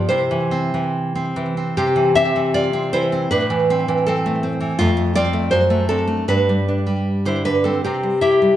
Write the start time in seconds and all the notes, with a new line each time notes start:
0.09 C3 E4 C5
0.31 E3
0.51 C4
0.74 E3
1.15 C4
1.36 E3
1.57 C4
1.77 C3 C4 G4
1.96 E3
2.15 C4 G4 E5
2.36 E3
2.54 F4 D5
2.73 C4
2.93 E3 E4 C5
3.12 C4
3.31 A2 D4 B4
3.50 E3
3.70 C4
3.88 E3
4.07 C4 A4
4.26 A3
4.43 C4
4.61 E3
4.79 F2 A3 F4
4.97 A3
5.15 C4 F4 D5
5.33 A3
5.51 F#2 F#4 C5
5.70 A3
5.89 C4 D4 A4
6.08 A3
6.28 G2 D4 B4
6.49 G3
6.68 D4
6.87 G3
7.25 D3 E4 C5
7.45 D4 B4
7.64 G3 C4 A4
7.84 C3 C4 G4
8.03 G3
8.21 E4 G4 E5
8.42 G3